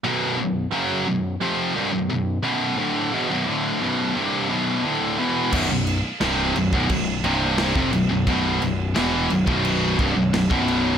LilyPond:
<<
  \new Staff \with { instrumentName = "Distorted electric guitar" } { \clef bass \time 4/4 \key b \phrygian \tempo 4 = 87 <b,, fis, b,>8 <b,, fis,>8 <fis, cis fis>8 <b,, fis,>8 <eis, c eis>8 <c, g,>16 <b,, fis,>16 <b,, fis,>8 <b,, fis, b,>8 | <d, a, d>8 <e, b,>16 <b,, fis,>16 <d, a, d>8 <b,, fis, b,>8 <c, g, c>8 <b,, fis, b,>8 <d, a, d>8 <e, b, e>8 | <b,, fis,>16 <b,, fis,>8 r16 <c, g, c>8 <b,, fis,>16 <b,, fis,>16 <b,, fis,>8 <c, g, c>8. <eis, c>16 <b,, fis,>16 <b,, fis,>16 | <b,, fis, b,>8 <b,, fis,>8 <e, b, e>8 <b,, fis,>16 <b,, fis, b,>8. <c, g,>16 <b,, fis,>16 <b,, fis,>16 <b,, fis, b,>8. | }
  \new Staff \with { instrumentName = "Distorted electric guitar" } { \clef bass \time 4/4 \key b \phrygian <b,, fis, b,>8 <b,, fis,>8 <fis, cis fis>8 <b,, fis,>8 <eis, c eis>8 <c, g,>16 <b,, fis,>16 <b,, fis,>8 <b,, fis, b,>8 | <d, a, d>8 <e, b,>16 <b,, fis,>16 <d, a, d>8 <b,, fis, b,>8 <c, g, c>8 <b,, fis, b,>8 <d, a, d>8 <e, b, e>8 | <b,, fis,>16 <b,, fis,>8 r16 <c, g, c>8 <b,, fis,>16 <b,, fis,>16 <b,, fis,>8 <c, g, c>8. <eis, c>16 <b,, fis,>16 <b,, fis,>16 | <b,, fis, b,>8 <b,, fis,>8 <e, b, e>8 <b,, fis,>16 <b,, fis, b,>8. <c, g,>16 <b,, fis,>16 <b,, fis,>16 <b,, fis, b,>8. | }
  \new Staff \with { instrumentName = "Picked electric bass" } { \clef bass \time 4/4 \key b \phrygian r1 | r1 | b,,,16 b,,,8 r16 c,,8 b,,,16 b,,,16 b,,,8 c,,8. eis,,16 b,,,16 b,,,16 | b,,,8 b,,,8 e,,8 b,,,16 b,,,8. c,,16 b,,,16 b,,,16 b,,,8. | }
  \new DrumStaff \with { instrumentName = "Drums" } \drummode { \time 4/4 r4 r4 r4 r4 | r4 r4 r4 r4 | <cymc bd>8 cymc8 <cymc sn>8 cymc16 bd16 <cymc bd>8 cymc8 <cymc sn>16 bd16 cymc8 | <cymc bd>8 cymc8 <cymc sn>8 cymc16 bd16 cymc8 <cymc bd>8 <cymc sn>16 bd16 cymc8 | }
>>